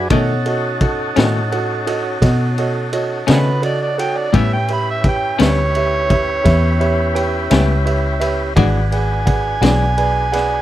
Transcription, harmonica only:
3.30 F#4 G#4 B4
3.65 D5
3.82 D5
3.99 G5
4.18 D5
4.36 E5
4.53 G5
4.73 B5
4.90 E5
5.08 G5
5.41 C#5
8.94 G#5

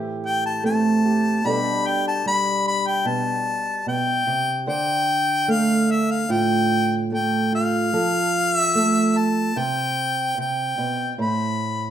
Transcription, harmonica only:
0.26 G5
0.46 A5
0.66 A5
1.47 B5
1.87 G5
2.08 A5
2.27 B5
2.67 B5
2.87 G5
3.07 A5
3.88 G5
4.69 G5
5.51 F5
5.92 E5
6.11 F5
6.32 G5
7.13 G5
7.55 F5
8.56 E5
9.17 A5
9.59 G5
10.40 G5
11.21 B5

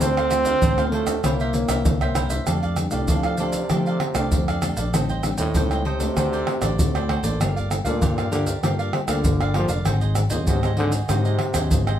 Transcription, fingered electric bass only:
0.00 D2
0.62 A1
0.78 D2
1.24 C2
1.69 C2
1.86 C2
2.47 F2
2.92 C2
3.09 F3
3.70 F3
4.15 C2
4.32 F2
4.77 A#1
4.94 A1
5.39 D#2
5.56 C#2
6.17 D2
6.62 A1
6.78 D2
7.23 A1
7.40 G1
7.85 D2
8.01 G2
8.63 G2
9.08 D2
9.24 G1
9.69 F1
9.86 G#1
10.31 D#2
10.48 G#2
11.09 G#2
11.54 D#2
11.71 G#1

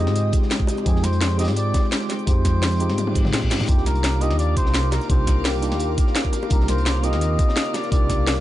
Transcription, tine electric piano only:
Already playing: G#3 C4 D#4
0.00 F4 G4
0.85 G#3 C4 D#4 F4 G4
1.38 G#3 C4 D#4 F4 G4
2.26 G#3 C4 D#4 F4 G4
2.79 G#3 C4 D#4 F4 G4
3.32 G#3 C4 D#4 F4 G4
3.67 A#3 D4 D#4 F4 G4
4.20 A#3 D4 D#4 F4 G4
5.08 A#3 D4 D#4 F4 G4
5.61 A#3 D4 D#4 F4 G4
6.49 A#3 D4 D#4 F4 G4
7.02 A#3 C4 D#4 F4 G4
7.91 A#3 D4 D#4 F4 G4

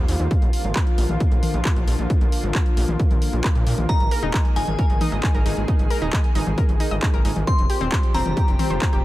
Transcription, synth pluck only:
3.89 D#4
4.11 A#4
4.23 D#4
4.34 D#5
4.56 D#4
4.79 A#4
5.01 D#4
5.12 D#5
5.23 D#4
5.35 A#4
5.46 D#4
5.68 D#4
5.91 A#4
6.02 D#4
6.13 D#5
6.35 D#4
6.58 A#4
6.80 D#4
6.91 D#5
7.03 D#4
7.14 A#4
7.25 D#4
7.47 C4
7.70 G4
7.81 C4
7.92 C5
8.14 C4
8.37 G4
8.59 C4
8.70 C5
8.82 C4
8.93 G4

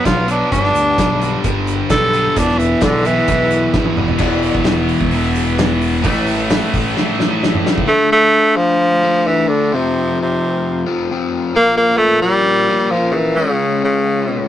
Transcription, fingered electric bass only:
0.05 B1
0.52 G1
0.74 D2
0.98 B1
1.44 G1
1.90 B1
2.36 E1
2.82 B1
3.29 B1
3.74 G#1
3.97 E1
4.20 E1
4.55 E1
5.01 E1
6.04 A1
6.74 A1
7.78 C#2

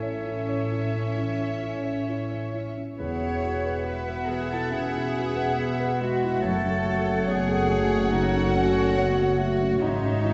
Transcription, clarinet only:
Already playing: A4
2.99 G#4
3.85 B3
4.70 C#4
5.56 B3
6.01 G#3
6.42 A3
7.28 B3
7.70 C#4
8.12 D#4
8.56 C#4
8.97 B3
9.37 A3
9.81 G#3

